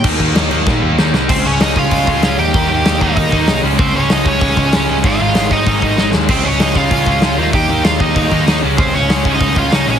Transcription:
<<
  \new Staff \with { instrumentName = "Overdriven electric guitar" } { \time 4/4 \key des \lydian \tempo 4 = 192 r1 | <c' c''>8 <des' des''>8 <ees' ees''>8 <f' f''>2 <g' g''>8~ | <g' g''>4. <ees' ees''>2 r8 | <c' c''>8 <des' des''>8 <ees' ees''>8 <des' des''>2~ <des' des''>8 |
<f' f''>4. <ees' ees''>2 r8 | <c' c''>8 <des' des''>8 <ees' ees''>8 <f' f''>2~ <f' f''>8 | <g' g''>4 <f' f''>8 <ees' ees''>2 r8 | <c' c''>8 <des' des''>4~ <des' des''>16 <ees' ees''>8. <f' f''>8 <ees' ees''>8 <des' des''>8 | }
  \new Staff \with { instrumentName = "Distorted electric guitar" } { \clef bass \time 4/4 \key des \lydian <ees bes ees'>4 <ees bes ees'>8 <ees bes ees'>8 <ees bes ees'>4 <ees bes ees'>8 <ees bes ees'>8 | <des aes des'>8 <des aes des'>8 <des aes des'>8 <des aes des'>8 <des aes des'>8 <des aes des'>8 <des aes des'>8 <ees bes ees'>8 | <ees bes ees'>8 <ees bes ees'>8 <ees bes ees'>8 <ees bes ees'>8 <ees bes ees'>8 <ees bes ees'>8 <ees bes ees'>8 <des aes des'>8 | <des aes des'>8 <des aes des'>8 <des aes des'>8 <des aes des'>8 <des aes des'>8 <des aes des'>8 <des aes des'>8 <des aes des'>8 |
<aes, ees aes>8 <aes, ees aes>8 <aes, ees aes>8 <aes, ees aes>8 <aes, ees aes>8 <aes, ees aes>8 <aes, ees aes>8 <aes, ees aes>8 | <des aes des'>8 <des aes des'>8 <des aes des'>8 <des aes des'>8 <des aes des'>8 <des aes des'>8 <des aes des'>8 <ees bes ees'>8 | <ees bes ees'>8 <ees bes ees'>8 <ees bes ees'>8 <ees bes ees'>8 <ees bes ees'>8 <ees bes ees'>8 <ees bes ees'>8 <des aes des'>8 | <des aes des'>8 <des aes des'>8 <des aes des'>8 <des aes des'>8 <des aes des'>8 <des aes des'>8 <des aes des'>8 <des aes des'>8 | }
  \new Staff \with { instrumentName = "Picked electric bass" } { \clef bass \time 4/4 \key des \lydian ees,8 ees,8 ees,8 ees,8 bes,8 ees,8 ees,8 c,8 | des,8 des,8 des,8 des,8 des,8 des,8 des,8 ees,8 | ees,8 ees,8 ees,8 ees,8 ees,8 ees,8 c,8 des,8 | des,8 des,8 des,8 des,8 des,8 des,8 des,8 des,8 |
aes,,8 aes,,8 aes,,8 aes,,8 aes,,8 aes,,8 aes,,8 ees,8 | des,8 des,8 des,8 des,8 des,8 des,8 des,8 ees,8 | ees,8 ees,8 ees,8 ees,8 ees,8 ees,8 ees,8 des,8 | des,8 des,8 des,8 des,8 des,8 des,8 des,8 bes,,8 | }
  \new DrumStaff \with { instrumentName = "Drums" } \drummode { \time 4/4 <cymc bd>8 <cymc bd>8 <cymc sn>8 cymc8 <bd sn>4 sn8 sn8 | <cymc bd>4 <hho sn>8 bd8 <hho bd>8 bd8 <hho sn>4 | <hho bd>4 <hho sn>8 bd8 <hho bd>8 bd8 <hho sn>4 | <hho bd>4 <hho sn>8 bd8 <hho bd>8 bd8 <hho sn>4 |
<hho bd>4 <hho sn>8 bd8 <hho bd>8 bd8 sn8 sn8 | <cymc hho bd>4 <hho sn>8 bd8 <hho bd>8 bd8 <hho sn>4 | <hho bd>4 <hho sn>8 bd8 <hho bd>8 bd8 <hho sn>4 | <hho bd>4 <hho sn>8 bd8 <hho bd>8 bd8 <hho sn>4 | }
>>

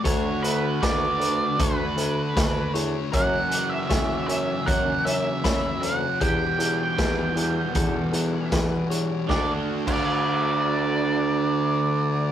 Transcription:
<<
  \new Staff \with { instrumentName = "Lead electric guitar" } { \time 4/4 \key d \major \tempo 4 = 78 cis''8 b'8 d''4 b'4. r8 | fis''8. e''8. e''8 fis''8 e''4 fis''8 | g''2. r4 | d''16 r8 d''2.~ d''16 | }
  \new Staff \with { instrumentName = "Clean electric guitar" } { \time 4/4 \key d \major a'4 b'4 a'4 b'8 cis''8 | ais'4 cis''4 ais'4 b''8 cis''8 | g'4 b'4 a'4 b'8 cis''8 | d'16 r8 d'16 r2. | }
  \new Staff \with { instrumentName = "Overdriven electric guitar" } { \time 4/4 \key d \major <d a d' fis'>1 | <fis, cis e ais cis' fis'>1 | <e, b, e g b g'>1 | <d d' fis' a'>16 r8 <d d' fis' a'>2.~ <d d' fis' a'>16 | }
  \new Staff \with { instrumentName = "Distorted electric guitar" } { \clef bass \time 4/4 \key d \major <d a d'>4 <d a d'>4 <d a d'>8 <a d'>8 <d a d'>4 | <fis, cis fis>4 <fis, cis fis>4 <fis, cis fis>8 <cis fis>8 <fis, cis fis>4 | <e, b, e>4 <e, b, e>4 <e, b, e>8 <b, e>8 <e, b, e>4 | <d a d'>16 r8 <d a d'>2.~ <d a d'>16 | }
  \new Staff \with { instrumentName = "Bassoon" } { \clef bass \time 4/4 \key d \major d,8 d,8 d,8 d,8 d,8 d,8 d,8 e,8 | fis,8 r8 e8 fis,8 fis,8 fis,8 fis,8 d,8 | e,8 e,8 e,8 e,8 e,8 e,8 e,8 e,8 | d,16 r8 d,2.~ d,16 | }
  \new DrumStaff \with { instrumentName = "Drums" } \drummode { \time 4/4 <hh bd>8 hh8 <hh bd sn>8 hh8 <hh bd>8 hh8 <hh bd sn>8 hh8 | <hh bd>8 hh8 <hh bd sn>8 hh8 <hh bd>8 hh8 <hh bd sn>8 hh8 | <hh bd>8 hh8 <hh bd sn>8 hh8 <hh bd>8 hh8 <hh bd sn>8 hh8 | <bd sn>8. <cymc bd>16 r4 r4 r4 | }
>>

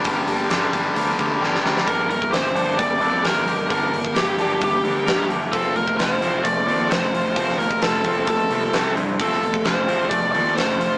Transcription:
<<
  \new Staff \with { instrumentName = "Lead electric guitar" } { \time 4/4 \key g \minor \tempo 4 = 131 r1 | bes'8 bes'8 c''4 d''8 d''8 bes'4 | bes'4 g'8 g'8 g'4. r8 | a'8 bes'8 c''4 d''8 d''8 c''4 |
c''8 bes'8 a'4 a'4. r8 | a'4 c''4 d''8 d''8 c''4 | }
  \new Staff \with { instrumentName = "Clean electric guitar" } { \time 4/4 \key g \minor <g d' g' bes'>4 <g d' g' bes'>4 <g d' g' bes'>8 <d' g' bes'>8 <g d' g' bes'>8 <d' g' bes'>8 | g4 g'8 d'8 g8 d'8 bes'8 g'8 | g4 g'8 d'8 g8 d'8 bes'8 g'8 | f4 f'8 c'8 a8 c'8 a'8 f'8 |
f4 f'8 c'8 a8 c'8 c8 c'8 | f4 f'8 c'8 a8 c'8 a'8 f'8 | }
  \new Staff \with { instrumentName = "Distorted electric guitar" } { \time 4/4 \key g \minor r1 | <g bes d'>8 <g bes>8 <g bes>8 <g bes d'>8 <g bes>8 <g bes d'>8 <g bes>8 <g bes>8 | <g bes d'>8 <g bes>8 <g bes>8 <g bes d'>8 <g bes>8 <g bes d'>8 <g bes>8 <g bes>8 | <f a c'>8 <f a>8 <f a>8 <f a c'>8 <f a>8 <f a c'>8 <f a>8 <f a>8 |
<f a c'>8 <f a>8 <f a>8 <f a c'>8 <f a>8 <f a c'>8 <c g c'>8 <c g>8 | <f a c'>8 <f a>8 <f a>8 <f a c'>8 <f a>8 <f a c'>8 <f a>8 <f a>8 | }
  \new Staff \with { instrumentName = "Distorted electric guitar" } { \clef bass \time 4/4 \key g \minor <g, d g>8 <g, d g>8 <g, d g>8 <g, d g>8 <g, d g>8 <g, d g>8 <g, d g>8 <g, d g>8 | r1 | r1 | r1 |
r1 | r1 | }
  \new Staff \with { instrumentName = "Picked electric bass" } { \clef bass \time 4/4 \key g \minor g,,8 g,,8 g,,8 g,,8 d,8 d,8 g,,8 d,8 | g,,4 g,,8 g,,8 g,,8 f,8 g,,4 | g,,8 g,,8 g,,8 g,,8 g,,8 d,8 g,8 g,,8 | f,,4 f,,8 f,,8 f,,8 ees,8 f,,4 |
f,,8 f,,8 f,,8 f,,8 f,,8 c,8 c,8 g,8 | f,,4 f,,8 f,,8 f,,8 ees,8 f,,4 | }
  \new DrumStaff \with { instrumentName = "Drums" } \drummode { \time 4/4 <hho bd>8 hho8 <hho sn>8 <hho bd>8 hho8 <hho bd>8 sn16 sn16 sn16 sn16 | <hho bd>8 hho16 bd16 <hho sn>8 hho8 <hho bd>8 hho8 <hho sn>8 hho8 | <hho bd>8 hho16 bd16 <hho sn>8 hho8 <hho bd>8 hho8 <hho sn>8 hho8 | <hho bd>8 hho16 bd16 <hho sn>8 hho8 <hho bd>8 hho8 <hho sn>8 hho8 |
<hho bd>16 sn16 hho16 bd16 <hho sn>8 <hho bd>8 <hho bd>8 hho8 <hho sn>8 hho8 | <hho bd>16 sn16 hho16 bd16 <hho sn>8 hho8 <hho bd>8 hho8 <hho sn>8 hho8 | }
>>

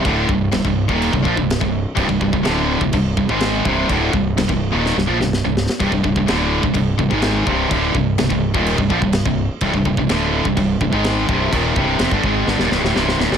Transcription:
<<
  \new Staff \with { instrumentName = "Distorted electric guitar" } { \clef bass \time 4/4 \key c \minor \tempo 4 = 126 <d, a, d>8 <c, g,>8 <c, g,>16 <c, g,>8 <ees, bes, ees>8 <c, g,>16 <bes, f>16 <c, g,>8 <c, g,>8 r16 | <c, g,>16 <c, g,>16 <c, g,>16 <c, g,>16 <d, a, d>8. <c, g,>16 <c, g,>8 <c, g,>16 <aes, ees aes>8. <c, g, c>8 | <d, a, d>8 <c, g,>8 <c, g,>16 <c, g,>8 <ees, bes, ees>8 <c, g,>16 <bes, f>16 <c, g,>8 <c, g,>8 r16 | <c, g,>16 <c, g,>16 <c, g,>16 <c, g,>16 <d, a, d>8. <c, g,>16 <c, g,>8 <c, g,>16 <aes, ees aes>8. <c, g, c>8 |
<d, a, d>8 <c, g,>8 <c, g,>16 <c, g,>8 <ees, bes, ees>8 <c, g,>16 <bes, f>16 <c, g,>8 <c, g,>8 r16 | <c, g,>16 <c, g,>16 <c, g,>16 <c, g,>16 <d, a, d>8. <c, g,>16 <c, g,>8 <c, g,>16 <aes, ees aes>8. <c, g, c>8 | <ees, bes, ees>8 <c, g, c>8 <f, c>16 <g, d>16 <aes, ees aes>8 <g, d>16 <ees, bes,>16 <c, g,>16 <d, a,>16 <c, g, c>8 <d, a,>16 <ees, bes,>16 | }
  \new Staff \with { instrumentName = "Distorted electric guitar" } { \clef bass \time 4/4 \key c \minor <d, a, d>8 <c, g,>8 <c, g,>16 <c, g,>8 <ees, bes, ees>8 <c, g,>16 <bes, f>16 <c, g,>8 <c, g,>8 r16 | <c, g,>16 <c, g,>16 <c, g,>16 <c, g,>16 <d, a, d>8. <c, g,>16 <c, g,>8 <c, g,>16 <aes, ees aes>8. <c, g, c>8 | <d, a, d>8 <c, g,>8 <c, g,>16 <c, g,>8 <ees, bes, ees>8 <c, g,>16 <bes, f>16 <c, g,>8 <c, g,>8 r16 | <c, g,>16 <c, g,>16 <c, g,>16 <c, g,>16 <d, a, d>8. <c, g,>16 <c, g,>8 <c, g,>16 <aes, ees aes>8. <c, g, c>8 |
<d, a, d>8 <c, g,>8 <c, g,>16 <c, g,>8 <ees, bes, ees>8 <c, g,>16 <bes, f>16 <c, g,>8 <c, g,>8 r16 | <c, g,>16 <c, g,>16 <c, g,>16 <c, g,>16 <d, a, d>8. <c, g,>16 <c, g,>8 <c, g,>16 <aes, ees aes>8. <c, g, c>8 | <ees, bes, ees>8 <c, g, c>8 <f, c>16 <g, d>16 <aes, ees aes>8 <g, d>16 <ees, bes,>16 <c, g,>16 <d, a,>16 <c, g, c>8 <d, a,>16 <ees, bes,>16 | }
  \new Staff \with { instrumentName = "Fingered electric bass" } { \clef bass \time 4/4 \key c \minor d,,8 c,,8 c,,16 c,,8 ees,,8 c,,16 bes,,16 c,,8 c,,8 r16 | c,,16 c,,16 c,,16 c,,16 d,,8. c,,16 c,,8 c,,16 aes,,8. c,,8 | d,,8 c,,8 c,,16 c,,8 ees,,8 c,,16 bes,,16 c,,8 c,,8 r16 | c,,16 c,,16 c,,16 c,,16 d,,8. c,,16 c,,8 c,,16 aes,,8. c,,8 |
d,,8 c,,8 c,,16 c,,8 ees,,8 c,,16 bes,,16 c,,8 c,,8 r16 | c,,16 c,,16 c,,16 c,,16 d,,8. c,,16 c,,8 c,,16 aes,,8. c,,8 | ees,,8 c,,8 f,,16 g,,16 aes,,8 g,,16 ees,,16 c,,16 d,,16 c,,8 d,,16 ees,,16 | }
  \new DrumStaff \with { instrumentName = "Drums" } \drummode { \time 4/4 <cymc bd>8 bd8 <cymc sn>16 bd8 bd16 cymc16 bd16 bd16 bd16 <cymc sn>16 bd8. | <cymc bd>16 bd16 bd16 bd16 <cymc sn>8. bd16 <cymc bd>8 bd16 bd16 <cymc sn>8 bd8 | <cymc bd>8 bd8 <cymc sn>16 bd8. sn16 sn8 sn16 sn8 sn16 sn16 | <cymc bd>16 bd16 bd16 bd16 <cymc sn>8. bd16 <cymc bd>8 bd16 bd16 <cymc sn>8 bd8 |
<cymc bd>8 bd8 <cymc sn>16 bd8 bd16 cymc16 bd16 bd16 bd16 <cymc sn>16 bd8. | <cymc bd>16 bd16 bd16 bd16 <cymc sn>8. bd16 <cymc bd>8 bd16 bd16 <cymc sn>8 bd8 | <cymc bd>8 bd8 <cymc sn>16 bd16 bd8 sn16 sn16 sn16 sn16 sn16 sn16 sn16 sn16 | }
>>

